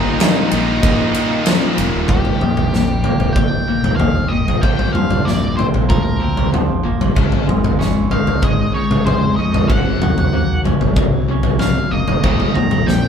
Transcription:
Already playing: fingered electric bass G1, distorted electric guitar D#2 A#2 D#3 G3 A#3 D#4, lead electric guitar D#4 D#5, string machine A#4 D#5 G5 D#6
0.19 distorted electric guitar D#2 A#2 D#3, snare, ride
0.24 distorted electric guitar A#2 D#3
0.51 fingered electric bass A#1, distorted electric guitar D#2 A#2 D#3 G3 A#3 D#4, ride
0.81 fingered electric bass A#1, distorted electric guitar D#2 D#3, kick, ride
0.86 distorted electric guitar D#2 A#2 D#3
1.12 distorted electric guitar D#2 A#2 D#3, ride
1.17 distorted electric guitar D#2 A#2 D#3
1.43 distorted electric guitar D#2 A#2 D#3, ride
1.47 distorted electric guitar D#2 A#2 D#3, snare
1.75 fingered electric bass F1, distorted electric guitar D#2, ride
1.80 distorted electric guitar D#2 A#2 D#3
1.96 fingered electric bass D#1
2.08 fingered electric bass D#1, clean electric guitar D#2, distorted electric guitar D#2 A#2 D#3, lead electric guitar G4, kick, floor tom
2.25 floor tom
2.41 fingered electric bass A#1, distorted electric guitar D#2 A#2, clean electric guitar D#3, mid tom
2.57 floor tom
2.73 distorted electric guitar D#2 A#2, clean electric guitar G3, snare
3.04 distorted electric guitar D#2 A#2, clean electric guitar A#3, floor tom
3.20 fingered electric bass D#1, floor tom
3.33 fingered electric bass A#1, distorted electric guitar D#2 A#2, clean electric guitar D#3, lead electric guitar G5, kick, floor tom
3.68 distorted electric guitar D#2 A#2, clean electric guitar A#3
3.83 fingered electric bass D#2, floor tom
3.96 distorted electric guitar D#2 A#2, clean electric guitar D#3, lead electric guitar F5, floor tom, mid tom
4.28 fingered electric bass G#1, distorted electric guitar D#2 A#2, clean electric guitar G3, lead electric guitar D#5
4.48 floor tom
4.61 fingered electric bass A#1, distorted electric guitar A#2 F3 A#3, clean electric guitar A#2, lead electric guitar G5, kick, floor tom
4.79 floor tom
4.93 fingered electric bass G2, distorted electric guitar A#2 F3, clean electric guitar F3, lead electric guitar F5, mid tom
5.11 floor tom
5.25 distorted electric guitar A#2 F3, clean electric guitar A#3, lead electric guitar D5, snare
5.57 distorted electric guitar A#2 F3, clean electric guitar C4, lead electric guitar C5, floor tom
5.74 fingered electric bass A#1, floor tom
5.89 fingered electric bass D2, distorted electric guitar A#2 F3, clean electric guitar F3, lead electric guitar A#4, kick, floor tom
6.19 distorted electric guitar A#2 F3, clean electric guitar C4
6.37 floor tom
6.51 distorted electric guitar A#2 F3, clean electric guitar F3, floor tom, mid tom
6.83 fingered electric bass G1, distorted electric guitar A#2 F3, clean electric guitar A#3
7.01 fingered electric bass G1, floor tom
7.15 fingered electric bass C#2, distorted electric guitar C#3 G#3 C#4, clean electric guitar C#3, kick, floor tom
7.32 floor tom
7.47 fingered electric bass G#1, distorted electric guitar C#3 G#3, clean electric guitar G#3, mid tom
7.64 floor tom
7.79 distorted electric guitar C#3 G#3, clean electric guitar C#4, snare
8.11 distorted electric guitar C#3 G#3, clean electric guitar D#4, lead electric guitar F5, floor tom
8.27 fingered electric bass C#2, floor tom
8.42 fingered electric bass G#1, distorted electric guitar C#3 G#3, clean electric guitar G#3, lead electric guitar D#5, kick, floor tom
8.74 distorted electric guitar C#3 G#3, clean electric guitar D#4, lead electric guitar C#5
8.91 fingered electric bass C#3, floor tom
9.06 distorted electric guitar C#3 G#3, clean electric guitar G#3, lead electric guitar C5, floor tom, mid tom
9.36 fingered electric bass F2, distorted electric guitar C#3 G#3, clean electric guitar C#4, lead electric guitar D#5
9.54 floor tom
9.67 fingered electric bass F#1, distorted electric guitar F#2 C#3 F#3, clean electric guitar F#2, lead electric guitar F#5, kick, floor tom
10.01 fingered electric bass D#2, distorted electric guitar F#2 C#3, clean electric guitar F#3, floor tom, mid tom
10.18 floor tom
10.33 distorted electric guitar F#2 C#3, clean electric guitar A#3
10.64 distorted electric guitar F#2 C#3, clean electric guitar C#4, floor tom
10.81 fingered electric bass F#1, floor tom
10.96 fingered electric bass C2, distorted electric guitar F#2 C#3, clean electric guitar F#3, kick, floor tom
11.28 distorted electric guitar F#2 C#3, clean electric guitar C#4
11.43 floor tom
11.59 distorted electric guitar F#2 C#3, clean electric guitar F#3, lead electric guitar F5, snare, floor tom
11.91 fingered electric bass F1, distorted electric guitar F#2 C#3, clean electric guitar A#3, lead electric guitar D#5
12.08 fingered electric bass F1, floor tom
12.23 fingered electric bass D#1, distorted electric guitar D#2 A#2 D#3, clean electric guitar D#2, kick, floor tom
12.40 floor tom
12.54 fingered electric bass A#1, distorted electric guitar D#2 A#2, clean electric guitar D#3, lead electric guitar A#5, mid tom
12.71 floor tom
12.86 distorted electric guitar D#2 A#2, clean electric guitar G3, lead electric guitar G5, snare

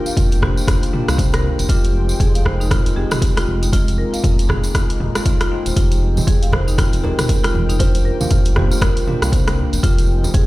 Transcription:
Already playing: analog synth pad D#3 A#3 F4 G5, tine electric piano A#3 D4 F4 G4
0.06 marimba F5, tambourine
0.17 analog synth bass F1, marimba F4, kick, closed hi-hat, mid tom, tambourine
0.32 closed hi-hat, tambourine
0.42 tine electric piano A#3 D4 F4 C5, marimba G4, kick, cross-stick, mid tom
0.57 tambourine
0.68 analog synth bass F1, marimba F4, kick, cross-stick, closed hi-hat, tambourine
0.83 closed hi-hat, tambourine
0.93 tine electric piano A#3 D4 F4 G4, mid tom
1.08 analog synth bass C2, marimba F5, cross-stick, closed hi-hat, tambourine
1.18 marimba C5, kick, closed hi-hat, tambourine
1.33 marimba A#4, cross-stick, closed hi-hat, tambourine
1.59 analog synth bass F1, closed hi-hat, tambourine
1.69 analog synth bass F1, analog synth pad F3 G#3 C4 G5, tine electric piano G#3 C4 D#4 G4, marimba F4, kick, closed hi-hat, tambourine
1.84 closed hi-hat, tambourine
2.09 tambourine
2.20 analog synth bass F1, marimba G#4, kick, closed hi-hat, tambourine
2.35 marimba F5, closed hi-hat, tambourine
2.45 tine electric piano G#3 C4 D#4 A#4, marimba C5, kick, cross-stick
2.60 marimba D#4, tambourine
2.71 marimba F4, kick, cross-stick, closed hi-hat, mid tom, tambourine
2.86 analog synth bass F1, closed hi-hat, tambourine
2.96 analog synth bass F1, tine electric piano G#3 C4 D#4 G4, marimba G#4
3.11 cross-stick, closed hi-hat, mid tom, tambourine
3.22 kick, closed hi-hat, tambourine
3.37 marimba F4, cross-stick, closed hi-hat, tambourine
3.48 analog synth bass F1
3.62 marimba D#4, closed hi-hat, tambourine
3.73 tine electric piano G#3 C4 D#4 F4, analog synth pad G#3 A#3 D#4, marimba F4, kick, closed hi-hat, tambourine
3.88 closed hi-hat, tambourine
3.98 marimba A#4
4.13 marimba F5, closed hi-hat, tambourine
4.24 analog synth bass F1, marimba F4, kick, closed hi-hat, mid tom, tambourine
4.39 closed hi-hat, tambourine
4.49 tine electric piano G#3 C4 D#4 G#4, marimba G#4, kick, cross-stick, mid tom
4.64 closed hi-hat, tambourine
4.75 marimba F4, kick, cross-stick, closed hi-hat, tambourine
4.90 closed hi-hat, tambourine
5.00 analog synth bass F1, mid tom
5.15 tine electric piano G#3 C4 D#4 F4, cross-stick, closed hi-hat, tambourine
5.25 tine electric piano G#3 C4 D#4 F4, marimba F4, kick, closed hi-hat, tambourine
5.40 marimba F4, cross-stick, closed hi-hat, tambourine
5.51 tine electric piano G#3 C4 D#4 F4
5.66 analog synth bass D#1, marimba C5, closed hi-hat, tambourine
5.76 analog synth bass F1, analog synth pad F3 G#3 C4 G5, tine electric piano G#3 C4 D#4 G4, marimba F4, kick, closed hi-hat, tambourine
5.92 closed hi-hat, tambourine, muted conga
6.17 tambourine, muted conga, high conga, low conga
6.27 analog synth bass F1, marimba G#4, kick, closed hi-hat, tambourine
6.42 marimba F5, closed hi-hat, tambourine
6.53 tine electric piano G#3 C4 D#4 A#4, marimba C5, kick, cross-stick, muted conga, high conga, low conga
6.68 marimba D#4, tambourine, high conga
6.78 marimba F4, kick, cross-stick, closed hi-hat, mid tom, tambourine
6.93 analog synth bass F1, closed hi-hat, tambourine, high conga
7.04 analog synth bass F1, tine electric piano G#3 C4 D#4 G4, marimba G#4, kalimba A#4, muted conga, low conga
7.19 kalimba A#4, cross-stick, closed hi-hat, mid tom, tambourine
7.29 kick, closed hi-hat, tambourine
7.44 marimba F4, cross-stick, closed hi-hat, tambourine, muted conga
7.54 analog synth bass F1, high conga, low conga
7.69 marimba D#4, closed hi-hat, tambourine, muted conga
7.79 analog synth pad D#3 A#3 F4, tine electric piano A#3 D4 F4 G4, marimba F4, kalimba C5, kick, closed hi-hat, tambourine
7.95 closed hi-hat, tambourine, muted conga
8.05 marimba A#4
8.20 marimba F5, tambourine, muted conga, high conga, low conga
8.30 analog synth bass F1, marimba F4, kick, closed hi-hat, mid tom, tambourine
8.45 closed hi-hat, tambourine
8.56 tine electric piano A#3 D4 F4 C5, marimba G4, kick, cross-stick, mid tom, muted conga, high conga, low conga
8.71 marimba F4, tambourine, high conga
8.81 analog synth bass F1, marimba F4, kalimba A#4, kick, cross-stick, closed hi-hat, tambourine
8.97 closed hi-hat, tambourine
9.07 tine electric piano A#3 D4 F4 G4, mid tom, muted conga, high conga
9.22 analog synth bass C2, marimba F5, cross-stick, closed hi-hat, tambourine
9.32 marimba C5, kick, closed hi-hat, tambourine
9.47 marimba A#4, cross-stick, closed hi-hat, tambourine, muted conga, low conga
9.73 analog synth bass F1, closed hi-hat, tambourine, muted conga
9.83 analog synth bass F1, analog synth pad F3 G#3 C4, tine electric piano G#3 C4 D#4 G4, marimba F4, kick, closed hi-hat, tambourine
9.98 closed hi-hat, tambourine, muted conga
10.24 tambourine, muted conga, high conga, low conga
10.34 analog synth bass F1, marimba G#4, kick, closed hi-hat, tambourine

